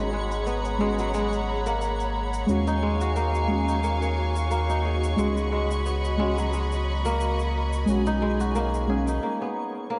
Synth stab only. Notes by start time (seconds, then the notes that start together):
Already playing: G#3 C#4 F#4
0.78 G#3 C#4
0.82 F#4
2.46 G#3 C#4
2.51 F#4
3.48 G#3 C#4
3.52 F#4
5.16 G#3 C#4 F#4
6.17 G#3 C#4
6.21 F#4
7.86 G#3 C#4
7.90 F#4
8.87 G#3 C#4
8.91 F5